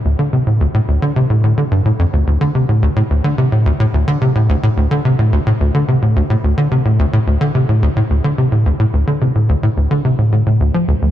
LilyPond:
\new Staff \with { instrumentName = "Analog synth bass" } { \clef bass \time 4/4 \key d \minor \tempo 4 = 108 d,16 d16 c16 a,16 d,16 a,16 d,16 d16 c16 a,16 a,16 d16 g,16 a,16 f,16 d,16 | d,16 d16 c16 a,16 d,16 a,16 d,16 d16 c16 a,16 d,16 a,16 d,16 d16 c16 a,16 | d,16 a,16 d,16 d16 c16 a,16 d,16 a,16 d,16 d16 c16 a,16 d,16 a,16 d,16 d16 | c16 a,16 d,16 a,16 d,16 d16 c16 a,16 d,16 a,16 d,16 d16 c16 a,16 d,16 a,16 |
d,16 d16 c16 a,16 d,16 a,16 d,16 d16 c16 a,16 a,16 a,16 d,16 f16 d,16 d,16 | }